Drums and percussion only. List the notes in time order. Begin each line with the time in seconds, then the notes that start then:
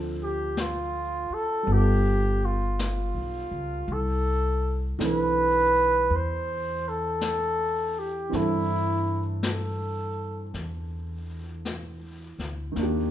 0.57 brush sweep, snare, hi-hat pedal
1.68 brush sweep
2.79 brush sweep, snare, hi-hat pedal
3.89 brush sweep
5.00 brush sweep, snare, hi-hat pedal
6.11 brush sweep
7.21 brush sweep, snare, hi-hat pedal
8.33 brush sweep, snare
9.43 brush sweep, snare, hi-hat pedal
10.54 brush sweep, snare
11.65 brush sweep, snare, hi-hat pedal
12.39 snare
12.76 brush sweep, snare